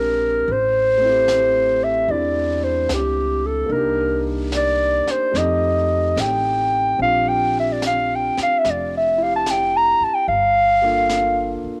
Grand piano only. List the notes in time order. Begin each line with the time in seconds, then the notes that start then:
Already playing: G#3 C4 D4 G4
0.97 A3 C4
1.05 E4
1.09 G4
2.09 C4 D4 E4
3.65 A#3 D4
3.72 D#4
3.77 G4
5.32 A3 C4 D#4
5.37 G4
6.98 C4 D4 F4
7.03 G4
9.18 E4 G4
10.82 A#3 D4 F4 A4